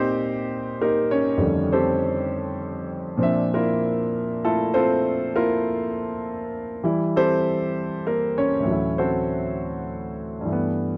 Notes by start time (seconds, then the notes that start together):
Already playing: A#2 A#3 C4 D#4 G4 C5
0.81 A#3 D#4 G4 A#4
1.11 C#4 C#5
1.38 F2 D3 D#3 G3 A3
1.72 C4 G4 A4 C5
3.18 A#2 F3 C4
3.22 D4 E5
3.54 A#3 E4 F4 A#4
4.45 A3 E4 F4 A4
4.74 C4 F4 A4 C5
5.36 A#3 E4 F4 A#4
6.84 E3 G3 E4
7.16 C4 G4 A4 C5
8.07 A#3 A#4
8.38 C#4 C#5
8.60 D2 A2
8.64 E3 F#3
8.69 A3 E4
8.98 C4 F#4 A4 C5
10.41 G2
10.45 E3 A3
10.52 B3